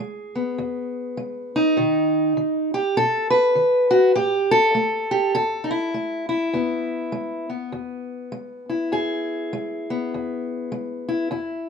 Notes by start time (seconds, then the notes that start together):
Already playing: G#4
0.00 G#3
0.35 B3
0.58 E2
1.17 G#3
1.56 D#4
1.77 B2 D#3
2.37 D#3
2.74 G4
2.97 B2 A4
3.30 B4
3.55 D#3
3.91 F#4
4.16 A2 G4
4.51 A4
4.75 A3
5.11 G4
5.35 E2 A4
5.64 D#4
5.71 E4
5.94 A3
6.29 E4
6.53 E2 B3
7.12 G#3
7.50 B3
7.72 E2
8.32 G#3
8.70 E4
8.92 E2 G#4
9.53 G#3
9.90 B3
10.14 E2
10.72 G#3
11.09 E4
11.31 E2 E4